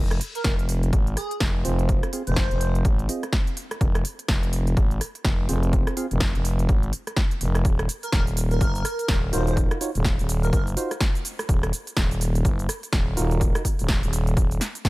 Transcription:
Already playing: fm bass F1
0.11 cross-stick, closed hi-hat
0.21 open hi-hat
0.35 digital synth lead A#4, closed hi-hat
0.44 fm bass F1, digital synth lead A#4, kick, snare, closed hi-hat
0.59 closed hi-hat
0.69 open hi-hat
0.83 closed hi-hat
0.93 fm bass G#1, kick, closed hi-hat
1.07 closed hi-hat
1.17 digital synth lead G#4, cross-stick, open hi-hat
1.31 closed hi-hat
1.40 fm bass F1, kick, snare, closed hi-hat
1.65 fm bass F1, synth stab C4 F4 G#4 C5, open hi-hat
1.79 closed hi-hat
1.89 kick, closed hi-hat
2.03 cross-stick, closed hi-hat
2.13 synth stab C4 F4 G#4 F5, open hi-hat
2.27 fm bass F1, digital synth lead C5, closed hi-hat
2.36 kick, snare, closed hi-hat
2.51 fm bass F1, closed hi-hat
2.61 open hi-hat
2.75 closed hi-hat
2.85 fm bass G#1, kick, closed hi-hat
2.99 closed hi-hat
3.09 synth stab C4 F4 G#4 D#5, open hi-hat
3.23 cross-stick, closed hi-hat
3.33 kick, snare, closed hi-hat
3.47 closed hi-hat
3.57 open hi-hat
3.71 cross-stick, closed hi-hat
3.81 fm bass F1, kick, closed hi-hat
3.95 cross-stick, closed hi-hat
4.05 open hi-hat
4.19 closed hi-hat
4.28 fm bass F1, kick, snare, closed hi-hat
4.43 closed hi-hat
4.53 open hi-hat
4.67 closed hi-hat
4.77 fm bass G#1, kick, closed hi-hat
4.91 closed hi-hat
5.01 cross-stick, open hi-hat
5.15 closed hi-hat
5.25 fm bass F1, kick, snare, closed hi-hat
5.49 fm bass F1, synth stab C4 F4 G#4 C5, open hi-hat
5.63 closed hi-hat
5.73 kick, closed hi-hat
5.87 cross-stick, closed hi-hat
5.97 synth stab C4 F4 G#4 F5, open hi-hat
6.11 fm bass F1, closed hi-hat
6.20 kick, snare, closed hi-hat
6.35 fm bass F1, closed hi-hat
6.45 open hi-hat
6.59 closed hi-hat
6.69 fm bass G#1, kick, closed hi-hat
6.83 closed hi-hat
6.93 open hi-hat
7.07 cross-stick, closed hi-hat
7.17 kick, snare, closed hi-hat
7.31 closed hi-hat
7.41 fm bass F1, open hi-hat
7.55 cross-stick, closed hi-hat
7.65 fm bass D#1, kick, closed hi-hat, shaker
7.79 cross-stick, closed hi-hat
7.89 open hi-hat, shaker
8.03 digital synth lead A#4, closed hi-hat, shaker
8.12 fm bass D#1, digital synth lead A#4, kick, snare, closed hi-hat, shaker
8.27 closed hi-hat, shaker
8.37 open hi-hat, shaker
8.51 digital synth lead A#4, closed hi-hat, shaker
8.61 fm bass F#1, kick, closed hi-hat, shaker
8.75 closed hi-hat, shaker
8.85 cross-stick, open hi-hat, shaker
8.99 closed hi-hat, shaker
9.08 fm bass D#1, kick, snare, closed hi-hat, shaker
9.33 fm bass D#1, synth stab D#4 F4 F#4 A#4, digital synth lead C5, open hi-hat, shaker
9.47 digital synth lead C5, closed hi-hat, shaker
9.57 kick, closed hi-hat, shaker
9.71 cross-stick, closed hi-hat
9.81 synth stab D#4 F4 F#4 C#5, open hi-hat, shaker
9.95 fm bass D#1, closed hi-hat, shaker
10.05 kick, snare, closed hi-hat, shaker
10.19 fm bass D#1, closed hi-hat, shaker
10.29 open hi-hat, shaker
10.43 digital synth lead A#4, closed hi-hat, shaker
10.53 fm bass F#1, digital synth lead A#4, kick, closed hi-hat, shaker
10.67 closed hi-hat, shaker
10.77 synth stab D#4 F4 F#4 C5, open hi-hat, shaker
10.91 cross-stick, closed hi-hat, shaker
11.01 kick, snare, closed hi-hat, shaker
11.15 closed hi-hat, shaker
11.25 open hi-hat, shaker
11.39 cross-stick, closed hi-hat, shaker
11.49 fm bass D#1, kick, closed hi-hat, shaker
11.63 cross-stick, closed hi-hat
11.73 open hi-hat, shaker
11.87 closed hi-hat, shaker
11.97 fm bass D#1, kick, snare, closed hi-hat, shaker
12.11 closed hi-hat, shaker
12.21 open hi-hat, shaker
12.35 closed hi-hat, shaker
12.45 fm bass F#1, kick, closed hi-hat, shaker
12.59 closed hi-hat, shaker
12.69 cross-stick, open hi-hat, shaker
12.83 closed hi-hat, shaker
12.93 fm bass D#1, kick, snare, closed hi-hat, shaker
13.17 fm bass D#1, synth stab D#4 F4 F#4 A#4, open hi-hat, shaker
13.31 closed hi-hat, shaker
13.41 kick, closed hi-hat, shaker
13.55 cross-stick, closed hi-hat, shaker
13.65 kick, open hi-hat, shaker
13.79 fm bass D#1, closed hi-hat, shaker
13.88 kick, snare, closed hi-hat, shaker
14.03 fm bass D#1, closed hi-hat, shaker
14.13 open hi-hat, shaker
14.27 closed hi-hat, shaker
14.37 fm bass D#1, kick, closed hi-hat, shaker
14.51 closed hi-hat, shaker
14.61 snare, open hi-hat, shaker
14.75 closed hi-hat, shaker
14.85 fm bass D#1, kick, snare, closed hi-hat, shaker

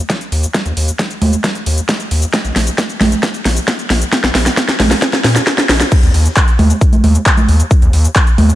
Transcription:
0.10 kick, snare, closed hi-hat, shaker
0.21 closed hi-hat, shaker
0.32 analog synth bass D#2, open hi-hat
0.43 closed hi-hat, shaker
0.54 kick, snare, closed hi-hat, shaker
0.66 analog synth bass D#2, closed hi-hat, shaker
0.77 analog synth bass D#2, open hi-hat
0.88 closed hi-hat, shaker
0.99 kick, snare, closed hi-hat, shaker
1.11 closed hi-hat, shaker
1.22 analog synth bass D#2, open hi-hat, high conga
1.33 closed hi-hat, shaker
1.44 kick, snare, closed hi-hat, shaker
1.55 closed hi-hat, shaker
1.66 analog synth bass D#2, open hi-hat
1.78 closed hi-hat, shaker
1.89 kick, snare, closed hi-hat, shaker
2.00 closed hi-hat, shaker
2.11 analog synth bass D#2, open hi-hat
2.22 closed hi-hat, shaker
2.34 kick, snare, closed hi-hat, shaker
2.45 analog synth bass A#1, closed hi-hat, shaker
2.56 analog synth bass A#1, snare, open hi-hat
2.67 closed hi-hat, shaker
2.78 kick, snare, closed hi-hat, shaker
2.90 closed hi-hat, shaker
3.01 analog synth bass A#1, snare, open hi-hat, high conga
3.12 closed hi-hat, shaker
3.23 kick, snare, closed hi-hat, shaker
3.34 closed hi-hat, shaker
3.45 analog synth bass A#1, snare, open hi-hat
3.57 closed hi-hat, shaker
3.68 kick, snare, closed hi-hat, shaker
3.79 closed hi-hat, shaker
3.90 analog synth bass A#1, snare, open hi-hat
4.01 closed hi-hat, shaker
4.13 kick, snare, closed hi-hat, shaker
4.24 analog synth bass A#1, snare, closed hi-hat, shaker
4.35 analog synth bass A#1, snare, open hi-hat
4.46 snare, shaker
4.57 kick, snare, closed hi-hat, shaker
4.69 snare, closed hi-hat, shaker
4.80 analog synth bass A#1, snare, open hi-hat, high conga
4.91 snare, open hi-hat, shaker
5.02 kick, snare, closed hi-hat, shaker
5.13 snare, closed hi-hat, shaker
5.24 analog synth bass A#2, snare, open hi-hat
5.36 snare, shaker
5.47 kick, snare, closed hi-hat, shaker
5.58 snare, closed hi-hat, shaker
5.69 analog synth bass A#1, snare, open hi-hat
5.81 snare, shaker
5.92 kick, closed hi-hat, crash, shaker
6.03 analog synth bass D#2, closed hi-hat, shaker
6.14 analog synth bass D#2, open hi-hat
6.25 closed hi-hat, shaker
6.37 kick, clap, closed hi-hat, shaker
6.48 closed hi-hat, shaker
6.59 analog synth bass D#2, open hi-hat, high conga
6.70 closed hi-hat, shaker
6.81 kick, closed hi-hat, shaker
6.93 closed hi-hat, high conga, shaker
7.04 analog synth bass D#2, open hi-hat, high conga
7.15 closed hi-hat, shaker
7.26 kick, clap, closed hi-hat, shaker
7.37 closed hi-hat, high conga, shaker
7.49 analog synth bass D#2, open hi-hat
7.60 closed hi-hat, shaker
7.71 kick, closed hi-hat, shaker
7.82 analog synth bass D#2, closed hi-hat, shaker
7.93 analog synth bass D#2, open hi-hat
8.05 closed hi-hat, shaker
8.16 kick, clap, closed hi-hat, shaker
8.27 closed hi-hat, shaker
8.38 analog synth bass D#2, open hi-hat, high conga
8.49 closed hi-hat, shaker

